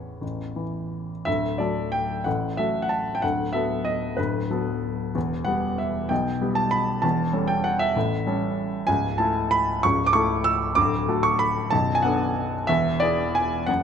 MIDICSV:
0, 0, Header, 1, 2, 480
1, 0, Start_track
1, 0, Key_signature, 2, "major"
1, 0, Tempo, 348837
1, 299, Time_signature, 3, 2, 24, 8
1, 1746, Tempo, 329128
1, 4146, Tempo, 320000
1, 8466, Tempo, 307377
1, 13266, Tempo, 315457
1, 13267, Key_signature, 3, "major"
1, 16146, Tempo, 316957
1, 18066, Tempo, 328767
1, 20696, End_track
2, 0, Start_track
2, 0, Title_t, "Grand piano"
2, 0, Program_c, 0, 0
2, 0, Control_c, 0, 64, 127
2, 0, Note_on_c, 0, 33, 36
2, 0, Note_on_c, 0, 40, 34
2, 0, Note_on_c, 0, 73, 46
2, 260, Note_off_c, 0, 33, 0
2, 293, Note_on_c, 0, 33, 39
2, 330, Control_c, 0, 64, 0
2, 544, Control_c, 0, 64, 127
2, 772, Note_on_c, 0, 52, 32
2, 866, Note_off_c, 0, 40, 0
2, 1503, Note_off_c, 0, 73, 0
2, 1699, Note_off_c, 0, 33, 0
2, 1723, Note_on_c, 0, 76, 79
2, 1742, Note_on_c, 0, 38, 52
2, 1744, Note_on_c, 0, 26, 43
2, 1746, Note_off_c, 0, 52, 0
2, 1770, Control_c, 0, 64, 0
2, 1987, Control_c, 0, 64, 127
2, 2202, Note_on_c, 0, 74, 54
2, 2205, Note_off_c, 0, 38, 0
2, 2206, Note_off_c, 0, 26, 0
2, 2209, Note_off_c, 0, 76, 0
2, 2222, Note_on_c, 0, 54, 42
2, 2227, Note_on_c, 0, 57, 38
2, 2232, Note_on_c, 0, 69, 47
2, 2693, Note_on_c, 0, 79, 73
2, 2704, Note_off_c, 0, 74, 0
2, 3133, Note_off_c, 0, 54, 0
2, 3136, Note_off_c, 0, 57, 0
2, 3138, Note_off_c, 0, 69, 0
2, 3167, Note_on_c, 0, 78, 58
2, 3181, Note_off_c, 0, 79, 0
2, 3189, Note_on_c, 0, 33, 49
2, 3191, Note_on_c, 0, 45, 50
2, 3214, Control_c, 0, 64, 0
2, 3496, Control_c, 0, 64, 127
2, 3646, Note_off_c, 0, 33, 0
2, 3647, Note_off_c, 0, 45, 0
2, 3649, Note_on_c, 0, 76, 72
2, 3650, Note_off_c, 0, 78, 0
2, 3667, Note_on_c, 0, 54, 41
2, 3671, Note_on_c, 0, 57, 37
2, 3680, Note_on_c, 0, 69, 43
2, 4013, Note_on_c, 0, 78, 67
2, 4019, Note_off_c, 0, 76, 0
2, 4113, Note_on_c, 0, 81, 68
2, 4141, Note_off_c, 0, 78, 0
2, 4488, Note_off_c, 0, 81, 0
2, 4496, Note_on_c, 0, 79, 74
2, 4562, Note_off_c, 0, 54, 0
2, 4565, Note_off_c, 0, 57, 0
2, 4569, Note_off_c, 0, 69, 0
2, 4607, Note_on_c, 0, 78, 73
2, 4615, Note_off_c, 0, 79, 0
2, 4630, Note_on_c, 0, 38, 45
2, 4632, Note_on_c, 0, 26, 42
2, 4642, Control_c, 0, 64, 0
2, 4918, Control_c, 0, 64, 127
2, 5063, Note_on_c, 0, 76, 74
2, 5074, Note_off_c, 0, 38, 0
2, 5075, Note_off_c, 0, 26, 0
2, 5076, Note_off_c, 0, 78, 0
2, 5087, Note_on_c, 0, 54, 40
2, 5094, Note_on_c, 0, 69, 48
2, 5095, Note_on_c, 0, 59, 40
2, 5543, Note_on_c, 0, 75, 73
2, 5553, Note_off_c, 0, 76, 0
2, 5983, Note_off_c, 0, 54, 0
2, 5987, Note_off_c, 0, 59, 0
2, 5987, Note_off_c, 0, 69, 0
2, 6024, Note_on_c, 0, 71, 62
2, 6031, Note_off_c, 0, 75, 0
2, 6040, Note_on_c, 0, 26, 49
2, 6041, Note_on_c, 0, 38, 51
2, 6067, Control_c, 0, 64, 0
2, 6346, Control_c, 0, 64, 127
2, 6506, Note_off_c, 0, 26, 0
2, 6507, Note_off_c, 0, 38, 0
2, 6530, Note_on_c, 0, 54, 42
2, 6536, Note_on_c, 0, 59, 40
2, 6541, Note_on_c, 0, 69, 45
2, 7448, Note_off_c, 0, 54, 0
2, 7451, Note_off_c, 0, 59, 0
2, 7453, Note_off_c, 0, 69, 0
2, 7495, Note_off_c, 0, 71, 0
2, 7500, Note_on_c, 0, 40, 53
2, 7502, Note_on_c, 0, 28, 44
2, 7531, Control_c, 0, 64, 0
2, 7750, Control_c, 0, 64, 127
2, 7942, Note_on_c, 0, 78, 73
2, 7958, Note_off_c, 0, 40, 0
2, 7960, Note_off_c, 0, 28, 0
2, 7969, Note_on_c, 0, 55, 44
2, 7975, Note_on_c, 0, 59, 41
2, 7985, Note_on_c, 0, 67, 44
2, 8449, Note_on_c, 0, 76, 57
2, 8450, Note_off_c, 0, 78, 0
2, 8890, Note_off_c, 0, 55, 0
2, 8894, Note_off_c, 0, 59, 0
2, 8899, Note_off_c, 0, 67, 0
2, 8926, Note_on_c, 0, 79, 67
2, 8947, Note_off_c, 0, 76, 0
2, 8949, Note_on_c, 0, 47, 53
2, 8950, Note_on_c, 0, 35, 51
2, 8980, Control_c, 0, 64, 0
2, 9180, Control_c, 0, 64, 127
2, 9423, Note_off_c, 0, 35, 0
2, 9423, Note_off_c, 0, 47, 0
2, 9431, Note_on_c, 0, 55, 45
2, 9438, Note_on_c, 0, 59, 45
2, 9444, Note_on_c, 0, 67, 45
2, 9650, Note_on_c, 0, 81, 81
2, 9673, Note_off_c, 0, 79, 0
2, 9895, Note_on_c, 0, 83, 82
2, 9914, Note_off_c, 0, 81, 0
2, 10333, Note_off_c, 0, 55, 0
2, 10337, Note_off_c, 0, 59, 0
2, 10340, Note_off_c, 0, 67, 0
2, 10377, Note_on_c, 0, 81, 75
2, 10382, Note_off_c, 0, 83, 0
2, 10399, Note_on_c, 0, 28, 47
2, 10399, Note_on_c, 0, 40, 53
2, 10431, Control_c, 0, 64, 0
2, 10697, Control_c, 0, 64, 127
2, 10857, Note_off_c, 0, 28, 0
2, 10857, Note_off_c, 0, 40, 0
2, 10862, Note_on_c, 0, 55, 46
2, 10862, Note_on_c, 0, 61, 43
2, 10869, Note_on_c, 0, 69, 51
2, 11091, Note_on_c, 0, 79, 79
2, 11105, Note_off_c, 0, 81, 0
2, 11346, Note_on_c, 0, 78, 79
2, 11351, Note_off_c, 0, 79, 0
2, 11587, Note_on_c, 0, 76, 87
2, 11596, Note_off_c, 0, 78, 0
2, 11769, Note_off_c, 0, 55, 0
2, 11769, Note_off_c, 0, 61, 0
2, 11772, Note_off_c, 0, 69, 0
2, 11849, Note_on_c, 0, 33, 50
2, 11853, Note_on_c, 0, 45, 55
2, 11862, Control_c, 0, 64, 0
2, 12095, Control_c, 0, 64, 127
2, 12300, Note_off_c, 0, 33, 0
2, 12302, Note_off_c, 0, 45, 0
2, 12322, Note_on_c, 0, 55, 46
2, 12328, Note_on_c, 0, 61, 47
2, 12333, Note_on_c, 0, 69, 46
2, 13212, Note_off_c, 0, 55, 0
2, 13215, Note_off_c, 0, 61, 0
2, 13217, Note_off_c, 0, 69, 0
2, 13258, Note_off_c, 0, 76, 0
2, 13263, Note_on_c, 0, 80, 91
2, 13283, Note_on_c, 0, 37, 59
2, 13285, Note_on_c, 0, 25, 52
2, 13291, Control_c, 0, 64, 0
2, 13533, Control_c, 0, 64, 127
2, 13739, Note_off_c, 0, 37, 0
2, 13739, Note_on_c, 0, 81, 72
2, 13740, Note_off_c, 0, 25, 0
2, 13743, Note_off_c, 0, 80, 0
2, 13759, Note_on_c, 0, 57, 47
2, 13764, Note_on_c, 0, 64, 50
2, 13774, Note_on_c, 0, 69, 54
2, 14241, Note_on_c, 0, 83, 92
2, 14247, Note_off_c, 0, 81, 0
2, 14686, Note_off_c, 0, 57, 0
2, 14689, Note_off_c, 0, 64, 0
2, 14694, Note_off_c, 0, 69, 0
2, 14733, Note_on_c, 0, 85, 85
2, 14735, Note_off_c, 0, 83, 0
2, 14756, Note_on_c, 0, 37, 55
2, 14760, Note_on_c, 0, 25, 59
2, 14763, Control_c, 0, 64, 0
2, 15012, Control_c, 0, 64, 127
2, 15079, Note_off_c, 0, 85, 0
2, 15086, Note_on_c, 0, 86, 96
2, 15187, Note_on_c, 0, 85, 89
2, 15192, Note_off_c, 0, 37, 0
2, 15194, Note_off_c, 0, 25, 0
2, 15199, Note_off_c, 0, 86, 0
2, 15212, Note_on_c, 0, 57, 49
2, 15221, Note_on_c, 0, 64, 51
2, 15225, Note_on_c, 0, 69, 51
2, 15662, Note_on_c, 0, 88, 94
2, 15668, Note_off_c, 0, 85, 0
2, 16094, Note_off_c, 0, 57, 0
2, 16098, Note_off_c, 0, 64, 0
2, 16100, Note_off_c, 0, 69, 0
2, 16133, Note_on_c, 0, 86, 102
2, 16142, Note_off_c, 0, 88, 0
2, 16152, Note_on_c, 0, 26, 58
2, 16158, Note_on_c, 0, 38, 66
2, 16176, Control_c, 0, 64, 0
2, 16373, Control_c, 0, 64, 127
2, 16616, Note_off_c, 0, 26, 0
2, 16619, Note_off_c, 0, 38, 0
2, 16634, Note_on_c, 0, 57, 47
2, 16638, Note_on_c, 0, 66, 50
2, 16643, Note_on_c, 0, 69, 61
2, 16857, Note_on_c, 0, 85, 89
2, 16867, Note_off_c, 0, 86, 0
2, 17098, Note_on_c, 0, 83, 90
2, 17111, Note_off_c, 0, 85, 0
2, 17536, Note_off_c, 0, 57, 0
2, 17538, Note_off_c, 0, 66, 0
2, 17540, Note_off_c, 0, 69, 0
2, 17576, Note_on_c, 0, 81, 89
2, 17583, Note_off_c, 0, 83, 0
2, 17597, Note_on_c, 0, 35, 64
2, 17598, Note_on_c, 0, 23, 53
2, 17624, Control_c, 0, 64, 0
2, 17853, Control_c, 0, 64, 127
2, 17937, Note_off_c, 0, 81, 0
2, 17945, Note_on_c, 0, 80, 87
2, 18056, Note_off_c, 0, 23, 0
2, 18056, Note_off_c, 0, 35, 0
2, 18059, Note_on_c, 0, 78, 78
2, 18068, Note_off_c, 0, 80, 0
2, 18084, Note_on_c, 0, 59, 51
2, 18087, Note_on_c, 0, 62, 47
2, 18095, Note_on_c, 0, 69, 57
2, 18787, Note_off_c, 0, 78, 0
2, 18975, Note_off_c, 0, 59, 0
2, 18977, Note_off_c, 0, 62, 0
2, 18981, Note_off_c, 0, 69, 0
2, 19005, Note_on_c, 0, 76, 89
2, 19029, Note_on_c, 0, 40, 65
2, 19031, Note_on_c, 0, 28, 51
2, 19051, Control_c, 0, 64, 0
2, 19279, Control_c, 0, 64, 127
2, 19481, Note_on_c, 0, 74, 94
2, 19490, Note_off_c, 0, 40, 0
2, 19491, Note_off_c, 0, 28, 0
2, 19492, Note_off_c, 0, 76, 0
2, 19505, Note_on_c, 0, 59, 47
2, 19510, Note_on_c, 0, 64, 48
2, 19514, Note_on_c, 0, 68, 55
2, 19992, Note_off_c, 0, 74, 0
2, 19993, Note_on_c, 0, 80, 88
2, 20418, Note_off_c, 0, 59, 0
2, 20420, Note_off_c, 0, 64, 0
2, 20423, Note_off_c, 0, 68, 0
2, 20455, Note_on_c, 0, 78, 84
2, 20471, Note_off_c, 0, 80, 0
2, 20471, Note_on_c, 0, 30, 54
2, 20476, Note_on_c, 0, 42, 58
2, 20505, Control_c, 0, 64, 0
2, 20696, Note_off_c, 0, 30, 0
2, 20696, Note_off_c, 0, 42, 0
2, 20696, Note_off_c, 0, 78, 0
2, 20696, End_track
0, 0, End_of_file